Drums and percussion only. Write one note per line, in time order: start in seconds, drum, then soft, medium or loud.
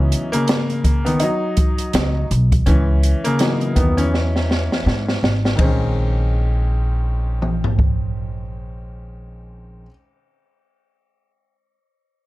0.12 closed hi-hat medium
0.33 closed hi-hat medium
0.48 snare medium
0.48 closed hi-hat medium
0.70 closed hi-hat soft
0.84 kick medium
0.84 closed hi-hat medium
1.06 closed hi-hat soft
1.20 closed hi-hat medium
1.57 kick medium
1.57 closed hi-hat medium
1.78 closed hi-hat medium
1.93 snare loud
1.93 closed hi-hat medium
2.31 closed hi-hat medium
2.52 kick medium
2.52 closed hi-hat medium
2.66 kick loud
2.66 closed hi-hat medium
3.03 closed hi-hat medium
3.25 closed hi-hat medium
3.39 snare medium
3.39 closed hi-hat medium
3.61 closed hi-hat soft
3.76 kick medium
3.76 closed hi-hat medium
3.98 closed hi-hat soft
4.14 snare soft
4.36 snare soft
4.51 snare medium
4.72 snare medium
4.87 snare medium
5.09 snare medium
5.24 snare medium
5.45 snare medium
5.59 kick medium
5.59 ride medium
7.42 mid tom soft
7.64 floor tom medium
7.79 kick medium